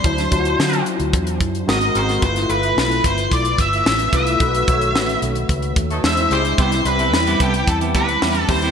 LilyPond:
<<
  \new Staff \with { instrumentName = "Lead electric guitar" } { \time 4/4 \key g \mixolydian \tempo 4 = 110 c''4. r4. dis''8 bis'8 | c''8 b'8 b'8 c''8 d''8 e''4 e''8~ | e''4. r4. e''8 bis'8 | c''8 b'8 b'8 g'8 a'8 b'4 c''8 | }
  \new Staff \with { instrumentName = "Tine electric piano" } { \time 4/4 \key g \mixolydian <fis d' e' c''>8 <fis d' e' f' fis'>4. r4 <gis bis fis' ais'>8 <gis bis fis' ais'>8 | <a e' f' b'>8 <a e' f' b'>4. r4. <a e' f' b'>8 | <a dis' fis' b'>8 <dis a fis' cis''>4. r4 <gis d' e' bis'>8 <gis d' e' bis'>8 | <g c' e' b'>8 <g c' e' b'>4. r4. <g c' e' g'>8 | }
  \new Staff \with { instrumentName = "Clean electric guitar" } { \time 4/4 \key g \mixolydian r1 | r1 | r1 | <g b e' g'>16 r8 <g b e' a'>16 r16 <g b e' g'>16 <g b e' a'>16 r8 <g b e' g'>16 <g b e' g'>16 r16 <g b e' g'>16 r8 <g b e' g'>16 | }
  \new Staff \with { instrumentName = "Horn section" } { \time 4/4 \key g \mixolydian r1 | r1 | r2 r8. <fis a dis' a'>16 r8 <gis bis g' bis'>8 | r1 | }
  \new Staff \with { instrumentName = "Fingered electric bass" } { \clef bass \time 4/4 \key g \mixolydian d,8 d,8 d8 r16 d,16 e,8 fis,8 gis,,8 gis,,8 | g,,8 g,,8 b,,8 g,,8 b,,8 g,,8 a,,8 c,8 | b,,8 b,,8 a,,8 b,,8 cis,8 dis,8 e,8 cis,8 | c,8 c,8 e,8 c,8 e,8 d,8 e,8 dis,8 | }
  \new DrumStaff \with { instrumentName = "Drums" } \drummode { \time 4/4 <hh bd>16 <hh sn>16 <hh bd>16 hh16 sn16 hh16 hh16 hh16 <hh bd>16 hh16 <hh bd>16 hh16 sn16 hh16 hh16 <hh sn>16 | <hh bd>16 <hh sn>16 hh16 hh16 sn16 hh16 <hh bd>16 hh16 <hh bd>16 hh16 <hh bd>16 hh16 sn16 hh16 <hh bd>16 hh16 | <hh bd>16 hh16 <hh bd>16 hh16 sn16 hh16 hh16 hh16 <hh bd>16 hh16 <hh bd>16 hh16 sn16 hh16 hh16 hh16 | <hh bd>16 <hh sn>16 hh16 hh16 sn16 hh16 <hh bd>16 hh16 <hh bd>16 hh16 <hh bd>16 hh16 sn16 hh16 <hho bd>16 <hh sn>16 | }
>>